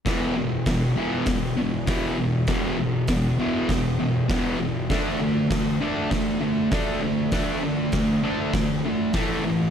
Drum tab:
HH |o-o-o-o-|o-o-o-o-|o-o-o-o-|o-o-o-o-|
SD |o-o-o-o-|o-o-o-o-|o-o-o-o-|o-o-o-o-|
BD |o-o-o-o-|o-o-o-o-|o-o-o-o-|o-o-o-o-|